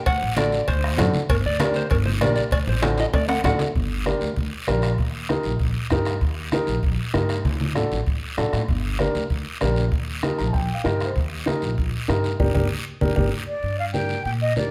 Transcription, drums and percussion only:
0.06 bombo low, cowbell, high conga, long guiro
0.37 bombo rim, cowbell, high conga, short guiro
0.52 short guiro
0.68 bombo low, cowbell, high conga, long guiro
0.84 bombo rim
0.98 bombo rim, cowbell, high conga, low conga, short guiro
1.14 high conga, short guiro
1.29 bombo low, cowbell, high conga, long guiro
1.59 bombo rim, cowbell, high conga, short guiro
1.74 short guiro
1.90 bombo low, cowbell, high conga, long guiro
2.05 high conga
2.21 bombo rim, cowbell, high conga, short guiro
2.36 short guiro
2.51 bombo low, cowbell, long guiro
2.67 low conga
2.82 bombo rim, cowbell, high conga, high timbale, short guiro
2.98 high timbale, short guiro
3.13 bombo low, cowbell, high conga, low timbale, long guiro
3.29 bombo rim, low timbale
3.44 bombo low, bombo rim, cowbell, high conga, low conga, short guiro
3.59 high conga, low timbale, short guiro
3.75 bombo low, high conga, long guiro
4.06 bombo rim, high conga, short guiro
4.21 short guiro
4.37 bombo low, high conga, long guiro
4.67 bombo rim, high conga, short guiro
4.82 bombo rim, short guiro
4.98 bombo low, high conga, long guiro
5.29 bombo rim, high conga, short guiro
5.43 short guiro
5.59 bombo low, high conga, long guiro
5.90 bombo low, bombo rim, high conga, short guiro
6.05 bombo rim, short guiro
6.21 bombo low, high conga, long guiro
6.51 bombo rim, high conga, short guiro
6.67 short guiro
6.83 bombo low, high conga, long guiro
7.14 bombo rim, high conga, short guiro
7.29 bombo rim, short guiro
7.45 bombo low, high conga, long guiro
7.60 high conga
7.75 bombo rim, low conga, short guiro
7.92 low conga, short guiro
8.06 bombo low, long guiro
8.37 bombo rim, low conga, short guiro
8.53 bombo rim, low conga, short guiro
8.68 bombo low, high conga, long guiro
8.99 bombo rim, high conga, short guiro
9.15 short guiro
9.30 bombo low, high conga, long guiro
9.61 bombo rim, high conga, short guiro
9.76 short guiro
9.92 bombo low, high conga, long guiro
10.22 bombo rim, high conga, short guiro
10.39 short guiro
10.54 bombo low, high conga, long guiro
10.85 bombo rim, high conga, short guiro
11.00 bombo rim, short guiro
11.16 bombo low, high conga, long guiro
11.47 bombo rim, high conga, short guiro
11.62 short guiro
11.78 bombo low, high conga, long guiro
12.09 bombo rim, high conga, short guiro
12.24 short guiro
12.40 bombo low, high conga, long guiro
12.55 bombo low, high conga, long guiro
13.01 bombo low, high conga, long guiro
13.16 bombo low, high conga, long guiro
13.63 high conga, long guiro
13.94 high conga, short guiro
14.09 short guiro
14.25 high conga, long guiro
14.56 high conga, short guiro

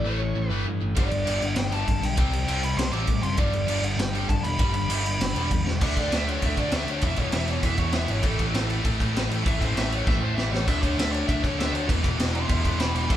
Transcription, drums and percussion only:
0.96 kick, crash
1.11 crash
1.27 crash
1.42 crash
1.56 snare, crash
1.72 crash
1.88 kick, crash
2.03 crash
2.17 kick, crash
2.33 crash
2.48 crash
2.63 crash
2.79 snare, crash
2.93 crash
3.07 kick, crash
3.23 crash
3.37 kick, crash
3.53 crash
3.68 crash
3.84 crash
3.99 snare, crash
4.15 crash
4.29 kick, crash
4.44 crash
4.59 kick, crash
4.74 crash
4.90 crash
5.06 crash
5.21 snare, crash
5.36 crash
5.51 kick, crash
5.67 snare
5.81 kick, crash
5.97 kick, crash
6.12 snare, crash
6.28 crash
6.42 kick, crash
6.57 kick, crash
6.72 snare, crash
6.88 crash
7.01 kick, crash
7.16 kick, crash
7.32 snare, crash
7.48 crash
7.63 kick, crash
7.78 kick, crash
7.92 snare, crash
8.08 crash
8.23 kick, crash
8.39 kick, crash
8.54 snare, crash
8.70 crash
8.85 kick, crash
9.00 kick, crash
9.16 snare, crash
9.31 crash
9.46 kick, crash
9.61 kick, crash
9.77 snare, crash
9.92 crash
10.07 kick, snare
10.38 snare
10.54 snare
10.68 kick, splash, crash
10.83 kick, crash
10.99 snare, crash
11.14 crash
11.29 kick, crash
11.44 kick, crash
11.60 snare, crash
11.75 crash
11.89 kick, crash
12.04 kick, crash
12.20 snare, crash
12.35 crash
12.49 kick, crash
12.65 kick, crash
12.80 snare, crash
12.95 crash
13.10 kick, crash

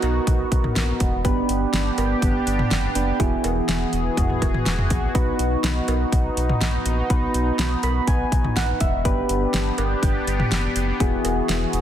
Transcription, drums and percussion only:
0.02 closed hi-hat, cowbell
0.27 kick, closed hi-hat
0.52 kick, closed hi-hat
0.64 mid tom
0.76 snare, closed hi-hat
1.00 kick, closed hi-hat
1.25 kick, closed hi-hat
1.49 closed hi-hat
1.74 snare, closed hi-hat
1.98 closed hi-hat, cowbell
2.22 kick, closed hi-hat
2.47 closed hi-hat
2.59 mid tom
2.71 snare, closed hi-hat
2.95 closed hi-hat
3.20 kick, closed hi-hat
3.44 closed hi-hat, cowbell
3.69 snare, closed hi-hat
3.93 closed hi-hat
4.17 kick, closed hi-hat, mid tom
4.30 mid tom
4.42 kick, closed hi-hat, cowbell
4.54 mid tom
4.66 snare, closed hi-hat
4.79 mid tom
4.90 kick, closed hi-hat
5.15 kick, closed hi-hat
5.39 closed hi-hat
5.64 snare, closed hi-hat
5.88 closed hi-hat, cowbell
6.12 kick, closed hi-hat
6.37 closed hi-hat
6.49 mid tom
6.61 snare, closed hi-hat
6.86 closed hi-hat
7.10 kick, closed hi-hat
7.34 closed hi-hat
7.59 snare, closed hi-hat
7.83 closed hi-hat, cowbell
8.07 kick, closed hi-hat
8.32 kick, closed hi-hat
8.44 mid tom
8.56 snare, closed hi-hat
8.80 kick, closed hi-hat
9.05 kick, closed hi-hat
9.29 closed hi-hat
9.54 snare, closed hi-hat
9.78 closed hi-hat, cowbell
10.03 kick, closed hi-hat
10.27 closed hi-hat
10.40 mid tom
10.52 snare, closed hi-hat
10.76 closed hi-hat
11.00 kick, closed hi-hat
11.25 closed hi-hat, cowbell
11.49 snare, closed hi-hat
11.73 closed hi-hat

